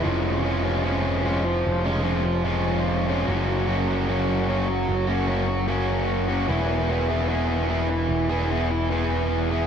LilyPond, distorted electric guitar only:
\new Staff \with { instrumentName = "Distorted electric guitar" } { \time 4/4 \key e \lydian \tempo 4 = 74 <eis gis cis' eis'>8 <eis gis cis' eis'>16 <gis cis' eis'>16 <eis gis cis' eis'>8 <eis gis cis' eis'>8. <gis cis' eis'>16 <eis gis cis' eis'>8 <eis gis cis' eis'>8. <gis cis' eis'>16 | <fis ais cis' fis'>8 <fis ais cis' fis'>16 <ais cis' fis'>16 <fis ais cis' fis'>8 <fis ais cis' fis'>8. <ais cis' fis'>16 <fis ais cis' fis'>8 <fis ais cis' fis'>8. <ais cis' fis'>16 | <e b e' gis'>8 <e b e' gis'>16 <b e' gis'>16 <e b e' gis'>8 <e b e' gis'>8. <b e' gis'>16 <e b e' gis'>8 <e b e' gis'>8. <b e' gis'>16 | }